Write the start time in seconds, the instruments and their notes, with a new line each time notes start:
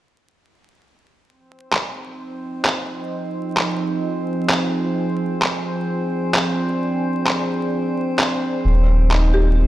1.26 synth texture C4 C5, ambient pad F4
1.47 ambient pad C5
1.54 ambient pad D#5
1.73 clap
2.38 ambient pad G#5
2.65 clap
3.57 clap
4.50 clap
5.42 clap
5.56 ambient pad D5
6.34 clap
7.27 clap
8.19 clap
8.65 sub bass D#1, ambient pad D#4
8.75 ambient pad A#4
8.95 ambient pad G5
9.11 upright piano D#4, clap
9.34 marimba G4